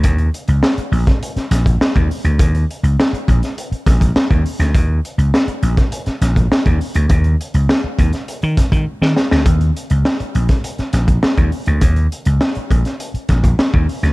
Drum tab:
HH |xxxx-xoxxxxx-xox|xxxx-xxxxxxx-xox|x-xx-xxxxxxx-xox|xxxx--xxxxxx----|
SD |----o--o-oo-o---|----o--o--o-o--o|----o--o-oo-o---|----o--o--o--ooo|
BD |o------o---o-o--|o-----o---oo-o--|o------o---o-o--|o-----o---oo----|

HH |xxxx-xxxxxxx-xox|xxxx-xxxxxxx--ox|
SD |----o--o-oo-o---|----o--o--o-o--o|
BD |o------o---o-o--|o-----o---oo-o--|